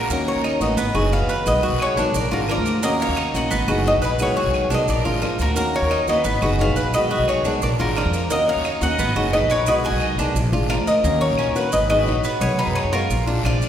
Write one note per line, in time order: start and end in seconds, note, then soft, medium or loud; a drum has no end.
0.00 0.25 F#4 medium
0.00 0.29 A#4 medium
0.10 0.34 D#2 medium
0.10 0.61 D#3 medium
0.10 0.44 A#3 medium
0.10 0.61 A#3 medium
0.10 0.61 C#4 medium
0.10 0.60 F#4 medium
0.10 long guiro medium
0.10 maracas loud
0.27 0.59 A#4 medium
0.27 0.61 C#5 medium
0.27 maracas soft
0.35 0.60 D#2 medium
0.44 0.77 D#4 medium
0.44 short guiro medium
0.44 claves medium
0.44 maracas soft
0.60 0.76 A1 medium
0.60 0.78 A#3 soft
0.60 0.78 C#4 medium
0.60 0.78 F#4 medium
0.60 1.09 B4 medium
0.60 1.13 D#5 medium
0.60 short guiro medium
0.60 maracas medium
0.77 0.94 G#1 loud
0.77 0.94 B3 medium
0.77 muted nylon-string guitar stroke medium
0.77 long guiro medium
0.77 maracas medium
0.94 1.19 F#1 loud
0.94 1.11 F#3 medium
0.94 1.11 B3 medium
0.94 1.12 D#4 medium
0.94 1.28 F#4 medium
0.94 1.12 G#4 medium
0.94 claves medium
0.94 maracas soft
1.12 1.45 F#3 medium
1.12 1.46 B3 medium
1.12 1.46 D#4 medium
1.12 1.46 G#4 medium
1.12 1.44 B4 medium
1.12 1.47 F5 loud
1.12 short guiro medium
1.12 maracas soft
1.21 1.48 D#2 medium
1.29 1.62 B4 medium
1.29 short guiro medium
1.29 maracas medium
1.45 1.71 B1 loud
1.45 1.96 B2 medium
1.45 1.97 D#3 medium
1.45 1.97 G#3 medium
1.45 1.97 B3 medium
1.45 1.96 F#4 medium
1.45 1.78 B4 medium
1.45 1.82 D#5 loud
1.45 long guiro medium
1.45 claves medium
1.45 maracas medium
1.63 1.96 F#4 medium
1.63 maracas soft
1.72 1.96 B1 medium
1.80 2.13 G#4 medium
1.80 2.17 C#5 loud
1.80 short guiro medium
1.80 claves medium
1.80 maracas soft
1.97 2.14 B1 medium
1.97 2.14 D#3 medium
1.97 2.14 G#3 medium
1.97 2.14 B3 medium
1.97 2.31 D4 medium
1.97 2.14 F#4 medium
1.97 short guiro medium
1.97 maracas medium
2.14 2.31 A#1 loud
2.14 2.31 A#4 medium
2.14 2.31 D5 medium
2.14 muted nylon-string guitar stroke medium
2.14 long guiro medium
2.14 maracas loud
2.31 2.56 G#1 loud
2.31 2.48 G#3 medium
2.31 2.49 D4 medium
2.31 2.48 F4 medium
2.31 2.48 F#4 medium
2.31 2.50 A#4 medium
2.31 maracas soft
2.48 2.82 F3 medium
2.48 2.83 G#3 medium
2.48 2.83 D4 medium
2.48 2.83 F4 medium
2.48 2.82 A#4 medium
2.48 2.81 A#4 medium
2.48 2.83 D5 loud
2.48 short guiro medium
2.48 claves medium
2.48 maracas soft
2.57 2.83 D2 loud
2.65 short guiro medium
2.65 maracas medium
2.82 3.07 D#2 loud
2.82 3.33 D#3 medium
2.82 3.16 A#3 medium
2.82 3.34 A#3 medium
2.82 3.34 C#4 medium
2.82 3.33 F#4 medium
2.82 2.91 A#4 medium
2.82 2.89 D#5 loud
2.82 long guiro medium
2.82 maracas loud
3.00 3.32 C#5 medium
3.00 3.33 F5 loud
3.00 maracas soft
3.09 3.33 D#2 medium
3.17 3.50 D#4 medium
3.17 short guiro medium
3.17 claves medium
3.17 maracas soft
3.34 3.50 A#1 medium
3.34 3.51 A#3 medium
3.34 3.51 C#4 medium
3.34 3.51 F#4 medium
3.34 3.82 D#5 medium
3.34 3.83 F#5 loud
3.34 short guiro medium
3.34 maracas medium
3.51 3.67 G#1 loud
3.51 3.68 B3 medium
3.51 muted nylon-string guitar stroke medium
3.51 long guiro medium
3.51 maracas medium
3.68 3.92 F#1 loud
3.68 3.84 F#3 medium
3.68 3.85 B3 medium
3.68 3.85 D#4 medium
3.68 4.01 F#4 medium
3.68 3.85 G#4 medium
3.68 claves medium
3.68 maracas soft
3.85 4.19 F#3 medium
3.85 4.19 B3 medium
3.85 4.20 D#4 medium
3.85 4.20 G#4 medium
3.85 4.02 B4 medium
3.85 4.02 D#5 loud
3.85 short guiro medium
3.85 maracas soft
3.94 4.20 A#1 loud
4.02 4.10 G#4 medium
4.02 4.35 B4 medium
4.02 4.10 B4 medium
4.02 short guiro medium
4.02 maracas medium
4.19 4.44 B1 loud
4.19 4.70 B2 medium
4.19 4.71 D#3 medium
4.19 4.71 G#3 medium
4.19 4.70 B3 medium
4.19 4.70 F#4 medium
4.19 4.68 G#4 medium
4.19 4.69 C#5 loud
4.19 long guiro medium
4.19 claves medium
4.19 maracas loud
4.37 4.70 F#4 medium
4.37 maracas soft
4.46 4.70 B1 medium
4.54 short guiro medium
4.54 claves medium
4.54 maracas soft
4.70 4.87 B1 medium
4.70 4.88 D#3 medium
4.70 4.87 G#3 medium
4.70 4.88 B3 medium
4.70 5.04 D4 medium
4.70 4.87 F#4 medium
4.70 4.87 B4 medium
4.70 4.89 D#5 medium
4.70 short guiro medium
4.70 maracas medium
4.88 5.04 A#1 loud
4.88 5.20 A#4 loud
4.88 5.21 D5 medium
4.88 muted nylon-string guitar stroke medium
4.88 long guiro medium
4.88 maracas medium
5.05 5.22 G#1 loud
5.05 5.21 G#3 medium
5.05 5.22 D4 medium
5.05 5.21 F4 medium
5.05 5.22 F4 medium
5.05 maracas soft
5.22 5.38 A#1 medium
5.22 5.54 F3 medium
5.22 5.56 G#3 medium
5.22 5.56 D4 medium
5.22 5.56 F4 medium
5.22 5.55 A#4 medium
5.22 short guiro medium
5.22 claves medium
5.22 maracas soft
5.39 5.56 D2 medium
5.39 5.71 F#4 medium
5.39 5.75 A#4 loud
5.39 short guiro medium
5.39 maracas medium
5.55 5.81 D#2 loud
5.55 6.06 D#3 medium
5.55 6.07 A#3 medium
5.55 5.90 A#3 medium
5.55 6.07 C#4 medium
5.55 6.07 F#4 medium
5.55 long guiro medium
5.55 maracas loud
5.74 6.06 A#4 medium
5.74 6.06 C#5 loud
5.74 maracas soft
5.82 6.06 D#2 medium
5.91 6.24 D#4 medium
5.91 short guiro medium
5.91 claves medium
5.91 maracas soft
6.07 6.24 D#2 medium
6.07 6.25 A#3 medium
6.07 6.25 C#4 medium
6.07 6.24 F#4 medium
6.07 6.56 B4 medium
6.07 6.61 D#5 loud
6.07 short guiro medium
6.07 maracas medium
6.24 6.41 G#1 loud
6.24 6.41 B3 medium
6.24 muted nylon-string guitar stroke medium
6.24 long guiro medium
6.24 maracas loud
6.42 6.66 F#1 loud
6.42 6.59 F#3 medium
6.42 6.59 B3 medium
6.42 6.59 D#4 medium
6.42 6.75 F#4 medium
6.42 6.59 G#4 medium
6.42 claves medium
6.42 maracas soft
6.59 6.93 F#3 medium
6.59 6.93 B3 medium
6.59 6.94 D#4 medium
6.59 6.94 G#4 medium
6.59 6.92 B4 medium
6.59 6.94 F5 loud
6.59 short guiro medium
6.59 maracas soft
6.67 6.93 A#1 loud
6.76 7.09 B4 medium
6.76 short guiro medium
6.76 maracas medium
6.93 7.17 B1 loud
6.93 7.45 B2 medium
6.93 7.45 D#3 medium
6.93 7.45 G#3 medium
6.93 7.45 B3 medium
6.93 7.44 F#4 medium
6.93 7.26 B4 medium
6.93 7.26 D#5 loud
6.93 long guiro medium
6.93 claves medium
6.93 maracas loud
7.10 7.44 F#4 medium
7.10 maracas soft
7.19 7.43 B1 medium
7.28 7.60 G#4 medium
7.28 7.60 C#5 loud
7.28 short guiro medium
7.28 claves medium
7.28 maracas soft
7.45 7.61 B1 medium
7.45 7.63 D#3 medium
7.45 7.62 G#3 medium
7.45 7.62 B3 medium
7.45 7.78 D4 medium
7.45 7.61 F#4 medium
7.45 short guiro medium
7.45 maracas medium
7.62 7.78 A#1 loud
7.62 7.70 A#4 loud
7.62 7.68 D5 loud
7.62 muted nylon-string guitar stroke medium
7.62 long guiro medium
7.62 maracas medium
7.79 8.04 G#1 loud
7.79 7.95 G#3 medium
7.79 7.96 D4 medium
7.79 7.95 F4 medium
7.79 7.96 F4 medium
7.79 7.95 F#4 medium
7.79 7.97 A#4 medium
7.79 maracas soft
7.96 8.30 F3 medium
7.96 8.30 G#3 medium
7.96 8.30 D4 medium
7.96 8.31 F4 medium
7.96 8.29 A#4 medium
7.96 8.28 A#4 medium
7.96 8.29 D5 loud
7.96 short guiro medium
7.96 claves medium
7.96 maracas soft
8.05 8.30 F2 loud
8.13 short guiro medium
8.13 maracas medium
8.30 8.55 D#2 loud
8.30 8.81 D#3 medium
8.30 8.64 A#3 medium
8.30 8.81 A#3 medium
8.30 8.81 C#4 medium
8.30 8.80 F#4 medium
8.30 8.47 A#4 medium
8.30 8.49 D#5 loud
8.30 long guiro medium
8.30 maracas loud
8.48 8.79 C#5 loud
8.48 8.82 F5 loud
8.48 maracas soft
8.56 8.81 D#2 medium
8.65 8.98 D#4 medium
8.65 short guiro medium
8.65 claves medium
8.65 maracas soft
8.81 8.98 D#2 medium
8.81 8.99 A#3 soft
8.81 8.99 C#4 medium
8.81 8.98 F#4 medium
8.81 9.30 D#5 medium
8.81 9.33 F#5 loud
8.81 short guiro medium
8.81 maracas medium
8.99 9.15 G#1 loud
8.99 9.16 B3 medium
8.99 muted nylon-string guitar stroke medium
8.99 long guiro medium
8.99 maracas medium
9.16 9.40 F#1 loud
9.16 9.32 F#3 medium
9.16 9.33 B3 medium
9.16 9.33 D#4 medium
9.16 9.49 F#4 medium
9.16 9.33 G#4 medium
9.16 claves medium
9.16 maracas soft
9.33 9.67 F#3 medium
9.33 9.67 B3 medium
9.33 9.67 D#4 medium
9.33 9.68 G#4 medium
9.33 9.49 B4 medium
9.33 9.51 D#5 loud
9.33 short guiro medium
9.33 maracas soft
9.42 9.66 A#1 loud
9.50 9.67 A#4 medium
9.50 9.83 B4 medium
9.50 9.68 C#5 loud
9.50 short guiro medium
9.50 maracas medium
9.66 9.91 B1 loud
9.66 10.18 B2 medium
9.66 10.18 D#3 medium
9.66 10.19 G#3 medium
9.66 10.18 B3 medium
9.66 10.17 F#4 medium
9.66 9.75 B4 medium
9.66 9.73 D#5 loud
9.66 long guiro medium
9.66 claves medium
9.66 maracas medium
9.84 10.18 F#4 medium
9.84 10.33 D#5 medium
9.84 10.50 G#5 loud
9.84 maracas soft
9.92 10.17 B1 loud
10.01 short guiro medium
10.01 claves medium
10.01 maracas soft
10.18 10.34 B1 medium
10.18 10.36 D#3 medium
10.18 10.35 G#3 medium
10.18 10.36 B3 medium
10.18 10.52 D4 medium
10.18 10.35 F#4 medium
10.18 short guiro medium
10.18 maracas medium
10.35 10.52 A#1 loud
10.35 muted nylon-string guitar stroke medium
10.35 long guiro medium
10.35 maracas medium
10.52 10.77 G#1 medium
10.52 10.69 G#3 medium
10.52 10.70 D4 medium
10.52 10.69 F4 medium
10.52 10.70 F4 medium
10.52 maracas soft
10.69 11.04 F3 medium
10.69 11.04 G#3 medium
10.69 11.04 D4 medium
10.69 11.04 F4 medium
10.69 11.03 A#4 medium
10.69 10.77 D5 medium
10.69 10.75 F5 loud
10.69 short guiro medium
10.69 claves medium
10.69 maracas soft
10.78 11.03 D2 medium
10.87 11.19 A#4 medium
10.87 11.21 D#5 loud
10.87 short guiro medium
10.87 maracas medium
11.04 11.29 D#2 loud
11.04 11.55 D#3 medium
11.04 11.38 A#3 medium
11.04 11.55 A#3 medium
11.04 11.55 C#4 medium
11.04 11.54 F#4 medium
11.04 long guiro medium
11.04 maracas medium
11.20 11.69 A#4 medium
11.20 11.69 C#5 loud
11.20 maracas soft
11.30 11.47 A#1 medium
11.38 11.55 C#4 medium
11.38 short guiro medium
11.38 claves medium
11.38 maracas soft
11.47 11.72 D#2 medium
11.55 11.73 A#3 medium
11.55 11.73 C#4 medium
11.55 11.72 F#4 medium
11.55 11.89 B4 medium
11.55 short guiro medium
11.55 maracas medium
11.72 12.06 G#1 loud
11.72 11.89 B4 medium
11.72 11.88 D#5 loud
11.72 muted nylon-string guitar stroke medium
11.72 long guiro medium
11.72 maracas medium
11.90 12.05 F#3 medium
11.90 12.06 B3 medium
11.90 12.07 D#4 medium
11.90 12.23 F#4 medium
11.90 12.07 G#4 medium
11.90 12.38 B4 medium
11.90 12.41 D#5 loud
11.90 claves medium
11.90 maracas soft
12.06 12.23 A#1 medium
12.06 12.40 F#3 medium
12.06 12.41 B3 medium
12.06 12.41 D#4 medium
12.06 12.42 G#4 medium
12.06 short guiro medium
12.06 maracas soft
12.24 12.58 B3 medium
12.24 short guiro medium
12.24 maracas medium
12.41 12.66 B1 loud
12.41 12.92 B2 medium
12.41 12.92 D#3 medium
12.41 12.93 G#3 medium
12.41 12.92 B3 medium
12.41 12.91 F#4 medium
12.41 12.56 G#4 medium
12.41 12.59 C#5 loud
12.41 long guiro medium
12.41 claves medium
12.41 maracas loud
12.57 12.92 D#4 medium
12.57 12.73 G#4 medium
12.57 12.76 B4 loud
12.57 maracas soft
12.67 12.83 F#2 medium
12.74 12.91 G#4 medium
12.74 12.93 C#5 loud
12.74 short guiro medium
12.74 claves medium
12.74 maracas soft
12.84 13.09 F#2 medium
12.91 13.10 D#3 soft
12.91 13.09 G#3 medium
12.91 13.10 B3 medium
12.91 13.24 F4 medium
12.91 13.26 F4 medium
12.91 13.09 F#4 medium
12.91 13.25 A#4 loud
12.91 short guiro medium
12.91 maracas medium
13.10 13.43 A#1 loud
13.10 muted nylon-string guitar stroke medium
13.10 long guiro medium
13.10 maracas medium
13.27 13.44 G#3 medium
13.27 13.44 D4 medium
13.27 13.44 F4 medium
13.27 maracas soft
13.44 13.61 A#1 medium
13.44 13.69 F3 medium
13.44 13.69 G#3 medium
13.44 13.69 D4 medium
13.44 13.69 F4 medium
13.44 13.69 D5 medium
13.44 13.69 F5 loud
13.44 short guiro medium
13.44 claves medium
13.44 maracas soft
13.62 short guiro medium
13.62 maracas medium